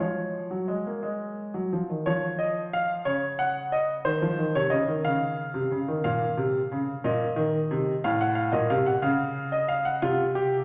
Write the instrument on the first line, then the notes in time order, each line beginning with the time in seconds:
grand piano
0.00 F3 C#5
0.51 F#3
0.68 G#3
0.87 A#3
1.03 G#3
1.54 F#3
1.73 F3
1.90 D#3
2.06 F3 C#5
2.39 D#5
2.73 F5
3.05 C#3 C#5
3.39 F#5
3.72 D#5
4.05 D#3 C5
4.22 F3
4.39 D#3
4.55 C3 C#5
4.70 C#3 D#5
4.87 D#3
5.05 C#3 F5
5.54 C3
5.71 C#3
5.88 D#3
6.04 A#2 F5
6.37 C3
6.72 C#3
7.04 A#2 D#5
7.36 D#3
7.71 C3
8.04 A2 F5
8.21 F#5
8.35 F5
8.52 A#2 D#5
8.70 C3 F5
8.86 F#5
9.02 C#3 F5
9.52 D#5
9.68 F5
9.85 F#5
10.02 C3 F4
10.35 G4